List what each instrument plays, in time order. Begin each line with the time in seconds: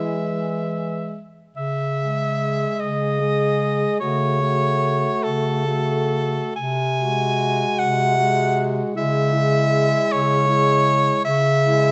Already playing: bass clarinet E3, tenor saxophone G#3, alto saxophone E4, soprano saxophone E5
1.56 bass clarinet C#3, soprano saxophone E5
1.99 tenor saxophone G#3, alto saxophone G#4
2.80 bass clarinet C#3, soprano saxophone D#5
3.20 tenor saxophone G#3, alto saxophone G#4
4.00 bass clarinet C#3, tenor saxophone A3, alto saxophone F#4, soprano saxophone C#5
4.41 tenor saxophone A3, alto saxophone F#4
5.23 bass clarinet C#3, soprano saxophone A4
5.65 tenor saxophone A3, alto saxophone F#4
6.56 bass clarinet C3, soprano saxophone G#5
6.98 tenor saxophone G#3, alto saxophone F#4
7.78 bass clarinet C3, soprano saxophone F#5
8.17 tenor saxophone G#3, alto saxophone F#4
8.95 bass clarinet C#3, tenor saxophone G#3, alto saxophone E4, soprano saxophone E5
9.33 tenor saxophone G#3, alto saxophone E4
10.11 bass clarinet C#3, soprano saxophone C#5
10.47 tenor saxophone G#3, alto saxophone E4
11.25 bass clarinet C#3, soprano saxophone E5
11.62 tenor saxophone G#3, alto saxophone E4